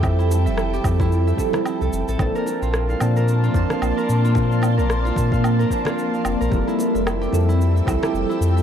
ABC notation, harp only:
X:1
M:4/4
L:1/16
Q:"Swing 16ths" 1/4=111
K:Bblyd
V:1 name="Harp"
z E z e z G z E z e z E E A z A | z B z F z f z B z F z f z B z F | z f z B z F z f z B z F z f z B | z E z e z G z E z e z G z E z e |]